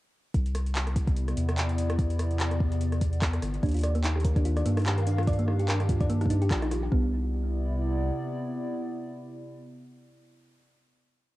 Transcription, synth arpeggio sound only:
0, 0, Header, 1, 2, 480
1, 0, Start_track
1, 0, Tempo, 410959
1, 401, Time_signature, 4, 2, 24, 8
1, 13274, End_track
2, 0, Start_track
2, 0, Title_t, "Synth arpeggio sound"
2, 0, Program_c, 0, 84
2, 4241, Note_on_c, 0, 62, 83
2, 4368, Note_off_c, 0, 62, 0
2, 4375, Note_on_c, 0, 65, 75
2, 4455, Note_off_c, 0, 65, 0
2, 4481, Note_on_c, 0, 74, 100
2, 4583, Note_off_c, 0, 74, 0
2, 4615, Note_on_c, 0, 58, 103
2, 4663, Note_off_c, 0, 58, 0
2, 4721, Note_on_c, 0, 63, 81
2, 4823, Note_off_c, 0, 63, 0
2, 4855, Note_on_c, 0, 67, 77
2, 4935, Note_off_c, 0, 67, 0
2, 4961, Note_on_c, 0, 70, 75
2, 5022, Note_off_c, 0, 70, 0
2, 5096, Note_on_c, 0, 62, 77
2, 5196, Note_off_c, 0, 62, 0
2, 5201, Note_on_c, 0, 65, 81
2, 5303, Note_off_c, 0, 65, 0
2, 5335, Note_on_c, 0, 74, 103
2, 5415, Note_off_c, 0, 74, 0
2, 5441, Note_on_c, 0, 58, 101
2, 5502, Note_off_c, 0, 58, 0
2, 5575, Note_on_c, 0, 63, 74
2, 5655, Note_off_c, 0, 63, 0
2, 5681, Note_on_c, 0, 67, 81
2, 5783, Note_off_c, 0, 67, 0
2, 5815, Note_on_c, 0, 70, 76
2, 5863, Note_off_c, 0, 70, 0
2, 5920, Note_on_c, 0, 62, 74
2, 6048, Note_off_c, 0, 62, 0
2, 6055, Note_on_c, 0, 65, 75
2, 6136, Note_off_c, 0, 65, 0
2, 6160, Note_on_c, 0, 74, 101
2, 6262, Note_off_c, 0, 74, 0
2, 6294, Note_on_c, 0, 58, 101
2, 6343, Note_off_c, 0, 58, 0
2, 6400, Note_on_c, 0, 63, 76
2, 6503, Note_off_c, 0, 63, 0
2, 6535, Note_on_c, 0, 67, 77
2, 6615, Note_off_c, 0, 67, 0
2, 6641, Note_on_c, 0, 70, 83
2, 6702, Note_off_c, 0, 70, 0
2, 6775, Note_on_c, 0, 62, 78
2, 6875, Note_off_c, 0, 62, 0
2, 6880, Note_on_c, 0, 65, 77
2, 6983, Note_off_c, 0, 65, 0
2, 7014, Note_on_c, 0, 74, 102
2, 7095, Note_off_c, 0, 74, 0
2, 7120, Note_on_c, 0, 58, 105
2, 7182, Note_off_c, 0, 58, 0
2, 7254, Note_on_c, 0, 63, 78
2, 7335, Note_off_c, 0, 63, 0
2, 7359, Note_on_c, 0, 63, 99
2, 7488, Note_off_c, 0, 63, 0
2, 7495, Note_on_c, 0, 67, 99
2, 7575, Note_off_c, 0, 67, 0
2, 7600, Note_on_c, 0, 65, 84
2, 7661, Note_off_c, 0, 65, 0
2, 7734, Note_on_c, 0, 63, 103
2, 7815, Note_off_c, 0, 63, 0
2, 7841, Note_on_c, 0, 65, 76
2, 7902, Note_off_c, 0, 65, 0
2, 7976, Note_on_c, 0, 67, 76
2, 8076, Note_off_c, 0, 67, 0
2, 8081, Note_on_c, 0, 59, 92
2, 8304, Note_off_c, 0, 59, 0
2, 13274, End_track
0, 0, End_of_file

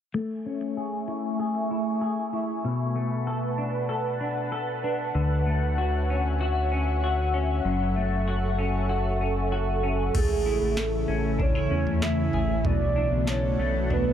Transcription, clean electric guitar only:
0, 0, Header, 1, 2, 480
1, 0, Start_track
1, 0, Key_signature, 3, "major"
1, 0, Tempo, 625000
1, 113, Time_signature, 4, 2, 24, 8
1, 10853, End_track
2, 0, Start_track
2, 0, Title_t, "Clean electric guitar"
2, 0, Program_c, 0, 27
2, 109, Note_on_c, 0, 57, 63
2, 354, Note_on_c, 0, 61, 45
2, 593, Note_on_c, 0, 68, 50
2, 828, Note_on_c, 0, 64, 44
2, 1062, Note_off_c, 0, 68, 0
2, 1071, Note_on_c, 0, 68, 52
2, 1304, Note_off_c, 0, 64, 0
2, 1313, Note_on_c, 0, 64, 49
2, 1538, Note_off_c, 0, 68, 0
2, 1547, Note_on_c, 0, 68, 52
2, 1781, Note_off_c, 0, 64, 0
2, 1790, Note_on_c, 0, 64, 46
2, 2031, Note_on_c, 0, 47, 68
2, 2054, Note_off_c, 0, 57, 0
2, 2078, Note_off_c, 0, 68, 0
2, 2080, Note_off_c, 0, 64, 0
2, 2082, Note_off_c, 0, 61, 0
2, 2270, Note_on_c, 0, 57, 44
2, 2512, Note_on_c, 0, 69, 57
2, 2749, Note_on_c, 0, 62, 50
2, 2985, Note_off_c, 0, 69, 0
2, 2988, Note_on_c, 0, 69, 54
2, 3227, Note_off_c, 0, 62, 0
2, 3230, Note_on_c, 0, 62, 46
2, 3468, Note_off_c, 0, 69, 0
2, 3471, Note_on_c, 0, 69, 55
2, 3713, Note_off_c, 0, 62, 0
2, 3716, Note_on_c, 0, 62, 49
2, 3951, Note_off_c, 0, 47, 0
2, 3954, Note_on_c, 0, 50, 69
2, 4191, Note_off_c, 0, 57, 0
2, 4194, Note_on_c, 0, 57, 45
2, 4436, Note_off_c, 0, 69, 0
2, 4439, Note_on_c, 0, 66, 57
2, 4683, Note_off_c, 0, 62, 0
2, 4686, Note_on_c, 0, 61, 50
2, 4917, Note_off_c, 0, 66, 0
2, 4920, Note_on_c, 0, 66, 56
2, 5155, Note_off_c, 0, 61, 0
2, 5158, Note_on_c, 0, 61, 51
2, 5402, Note_off_c, 0, 66, 0
2, 5405, Note_on_c, 0, 66, 54
2, 5633, Note_off_c, 0, 61, 0
2, 5636, Note_on_c, 0, 61, 54
2, 5874, Note_off_c, 0, 50, 0
2, 5875, Note_on_c, 0, 42, 75
2, 6112, Note_off_c, 0, 57, 0
2, 6115, Note_on_c, 0, 57, 48
2, 6353, Note_off_c, 0, 66, 0
2, 6356, Note_on_c, 0, 66, 59
2, 6591, Note_off_c, 0, 61, 0
2, 6594, Note_on_c, 0, 61, 49
2, 6821, Note_off_c, 0, 66, 0
2, 6830, Note_on_c, 0, 66, 62
2, 7070, Note_off_c, 0, 61, 0
2, 7073, Note_on_c, 0, 61, 48
2, 7303, Note_off_c, 0, 66, 0
2, 7312, Note_on_c, 0, 66, 57
2, 7549, Note_off_c, 0, 61, 0
2, 7552, Note_on_c, 0, 61, 52
2, 7793, Note_off_c, 0, 57, 0
2, 7793, Note_on_c, 0, 57, 70
2, 7794, Note_off_c, 0, 42, 0
2, 7841, Note_off_c, 0, 66, 0
2, 8029, Note_off_c, 0, 61, 0
2, 8032, Note_on_c, 0, 64, 53
2, 8509, Note_on_c, 0, 61, 54
2, 8742, Note_off_c, 0, 64, 0
2, 8745, Note_on_c, 0, 62, 53
2, 8871, Note_off_c, 0, 62, 0
2, 8871, Note_on_c, 0, 64, 45
2, 8984, Note_off_c, 0, 61, 0
2, 8993, Note_on_c, 0, 61, 47
2, 9228, Note_off_c, 0, 64, 0
2, 9237, Note_on_c, 0, 64, 50
2, 9477, Note_on_c, 0, 68, 55
2, 9719, Note_on_c, 0, 47, 70
2, 9742, Note_off_c, 0, 57, 0
2, 9761, Note_off_c, 0, 61, 0
2, 9763, Note_off_c, 0, 64, 0
2, 9763, Note_off_c, 0, 68, 0
2, 9953, Note_on_c, 0, 62, 54
2, 10189, Note_on_c, 0, 69, 61
2, 10440, Note_on_c, 0, 57, 54
2, 10674, Note_off_c, 0, 62, 0
2, 10677, Note_on_c, 0, 62, 55
2, 10853, Note_off_c, 0, 47, 0
2, 10853, Note_off_c, 0, 57, 0
2, 10853, Note_off_c, 0, 62, 0
2, 10853, Note_off_c, 0, 69, 0
2, 10853, End_track
0, 0, End_of_file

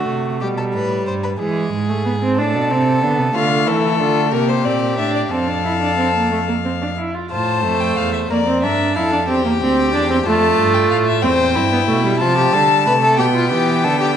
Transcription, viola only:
0, 0, Header, 1, 2, 480
1, 0, Start_track
1, 0, Key_signature, -1, "major"
1, 0, Tempo, 652884
1, 1029, Time_signature, 6, 3, 24, 8
1, 3420, Tempo, 662983
1, 6300, Tempo, 650759
1, 10385, End_track
2, 0, Start_track
2, 0, Title_t, "Viola"
2, 0, Program_c, 0, 41
2, 0, Note_on_c, 0, 57, 62
2, 308, Note_on_c, 0, 55, 66
2, 319, Note_off_c, 0, 57, 0
2, 1025, Note_off_c, 0, 55, 0
2, 1030, Note_on_c, 0, 56, 65
2, 1389, Note_on_c, 0, 57, 64
2, 1400, Note_off_c, 0, 56, 0
2, 1505, Note_off_c, 0, 57, 0
2, 1509, Note_on_c, 0, 59, 63
2, 1557, Note_off_c, 0, 59, 0
2, 1632, Note_on_c, 0, 60, 74
2, 1751, Note_on_c, 0, 62, 75
2, 1762, Note_off_c, 0, 60, 0
2, 1990, Note_on_c, 0, 60, 71
2, 2001, Note_off_c, 0, 62, 0
2, 2223, Note_off_c, 0, 60, 0
2, 2227, Note_on_c, 0, 59, 74
2, 2460, Note_off_c, 0, 59, 0
2, 2467, Note_on_c, 0, 57, 69
2, 3181, Note_on_c, 0, 58, 72
2, 3192, Note_off_c, 0, 57, 0
2, 3424, Note_on_c, 0, 60, 67
2, 3434, Note_off_c, 0, 58, 0
2, 3656, Note_off_c, 0, 60, 0
2, 3660, Note_on_c, 0, 62, 73
2, 3896, Note_off_c, 0, 62, 0
2, 3900, Note_on_c, 0, 60, 53
2, 4018, Note_on_c, 0, 62, 55
2, 4029, Note_off_c, 0, 60, 0
2, 4136, Note_off_c, 0, 62, 0
2, 4140, Note_on_c, 0, 64, 63
2, 4189, Note_off_c, 0, 64, 0
2, 4259, Note_on_c, 0, 62, 63
2, 4376, Note_off_c, 0, 62, 0
2, 4380, Note_on_c, 0, 60, 53
2, 4501, Note_off_c, 0, 60, 0
2, 4504, Note_on_c, 0, 58, 64
2, 4619, Note_off_c, 0, 58, 0
2, 4623, Note_on_c, 0, 57, 65
2, 4672, Note_off_c, 0, 57, 0
2, 4744, Note_on_c, 0, 58, 58
2, 4793, Note_off_c, 0, 58, 0
2, 4865, Note_on_c, 0, 60, 52
2, 4914, Note_off_c, 0, 60, 0
2, 4987, Note_on_c, 0, 62, 57
2, 5036, Note_off_c, 0, 62, 0
2, 5104, Note_on_c, 0, 64, 58
2, 5224, Note_on_c, 0, 65, 55
2, 5234, Note_off_c, 0, 64, 0
2, 5340, Note_off_c, 0, 65, 0
2, 5344, Note_on_c, 0, 65, 68
2, 5568, Note_off_c, 0, 65, 0
2, 5583, Note_on_c, 0, 57, 80
2, 6052, Note_off_c, 0, 57, 0
2, 6063, Note_on_c, 0, 58, 88
2, 6111, Note_off_c, 0, 58, 0
2, 6181, Note_on_c, 0, 60, 78
2, 6301, Note_on_c, 0, 62, 79
2, 6312, Note_off_c, 0, 60, 0
2, 6540, Note_on_c, 0, 64, 80
2, 6551, Note_off_c, 0, 62, 0
2, 6657, Note_off_c, 0, 64, 0
2, 6662, Note_on_c, 0, 62, 68
2, 6710, Note_off_c, 0, 62, 0
2, 6779, Note_on_c, 0, 60, 84
2, 6898, Note_off_c, 0, 60, 0
2, 6902, Note_on_c, 0, 58, 81
2, 6950, Note_off_c, 0, 58, 0
2, 7023, Note_on_c, 0, 60, 87
2, 7259, Note_off_c, 0, 60, 0
2, 7265, Note_on_c, 0, 62, 78
2, 7379, Note_off_c, 0, 62, 0
2, 7383, Note_on_c, 0, 60, 94
2, 7431, Note_off_c, 0, 60, 0
2, 7502, Note_on_c, 0, 57, 109
2, 8219, Note_on_c, 0, 60, 79
2, 8230, Note_off_c, 0, 57, 0
2, 8574, Note_off_c, 0, 60, 0
2, 8579, Note_on_c, 0, 59, 86
2, 8627, Note_off_c, 0, 59, 0
2, 8700, Note_on_c, 0, 57, 72
2, 8812, Note_off_c, 0, 57, 0
2, 8816, Note_on_c, 0, 55, 86
2, 8864, Note_off_c, 0, 55, 0
2, 8936, Note_on_c, 0, 53, 81
2, 9174, Note_on_c, 0, 55, 71
2, 9185, Note_off_c, 0, 53, 0
2, 9415, Note_on_c, 0, 57, 72
2, 9426, Note_off_c, 0, 55, 0
2, 9655, Note_on_c, 0, 59, 77
2, 9666, Note_off_c, 0, 57, 0
2, 10385, Note_off_c, 0, 59, 0
2, 10385, End_track
0, 0, End_of_file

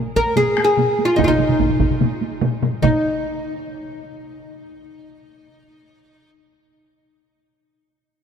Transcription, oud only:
0, 0, Header, 1, 2, 480
1, 0, Start_track
1, 0, Tempo, 409556
1, 1394, Time_signature, 4, 2, 24, 8
1, 9649, End_track
2, 0, Start_track
2, 0, Title_t, "Oud"
2, 0, Program_c, 0, 24
2, 192, Note_on_c, 0, 70, 92
2, 426, Note_off_c, 0, 70, 0
2, 431, Note_on_c, 0, 68, 92
2, 741, Note_off_c, 0, 68, 0
2, 755, Note_on_c, 0, 68, 85
2, 1228, Note_off_c, 0, 68, 0
2, 1233, Note_on_c, 0, 65, 82
2, 1362, Note_on_c, 0, 63, 71
2, 1364, Note_off_c, 0, 65, 0
2, 1443, Note_off_c, 0, 63, 0
2, 1455, Note_on_c, 0, 65, 64
2, 1499, Note_on_c, 0, 63, 77
2, 1531, Note_off_c, 0, 65, 0
2, 2773, Note_off_c, 0, 63, 0
2, 3310, Note_on_c, 0, 63, 70
2, 7379, Note_off_c, 0, 63, 0
2, 9649, End_track
0, 0, End_of_file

